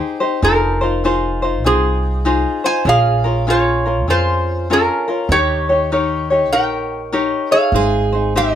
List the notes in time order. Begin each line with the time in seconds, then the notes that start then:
Already playing: D#4 G4 G#4 C5
0.20 D#4 G4 C5
0.42 F1 D#4 F4 G#4 A#4 C5
0.81 D#4 F4 C5
1.04 D#4 F4 G#4 C5
1.42 D#4 F4 C5
1.64 C2 C4 D#4 F4 G#4 C5
2.25 D#4 F4 G#4 C5
2.64 D#4 F4 C5 G#5
2.85 A#1 C#4 F4 G#4 A#4 F5
2.89 G#4
3.24 C#4 F4 A#4
3.47 C#4 F4 G#4 A#4 C#5
3.86 C#4 F4 A#4
4.07 F2 C#4 F4 G#4 A#4 C5
4.70 C#4 F4 G#4 A#4
5.08 C#4 F4 A#4
5.29 D#2 D#4 G4 A#4 C#5
5.69 D#4 G4 C#5
5.92 D#4 G4 A#4 C#5
6.30 D#4 G4 C#5
6.50 A#1 D#4 G4 A#4 C#5 G5
7.12 D#4 G4 A#4 C#5
7.51 D#4 G#4 C#5 F5
7.72 G#1 D#4 G#4 C5
8.12 D#4 C5
8.36 D#4 G4 C5 D#5